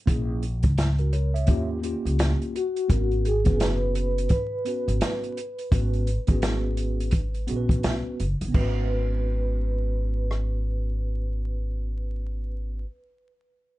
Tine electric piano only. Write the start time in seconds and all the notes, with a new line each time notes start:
0.06 A#3 C#4 E4 G#4
0.99 F#4 A#4
1.13 A#4 C#5
1.34 C#5 E5
1.47 A#3 C#4 F4 G4
1.81 A#3 C#4 F4 G4
2.88 B3 C#4 F#4 A#4
3.44 B3 C#4 F#4 B4
4.65 B3 C#4 F#4 B4
5.71 B3 C#4 F#4 B4
6.27 B3 C#4 F#4 G#4
7.47 B3 C#4 F#4 G#4
7.56 B4
8.48 B3 C#4
8.56 F#4
8.61 B4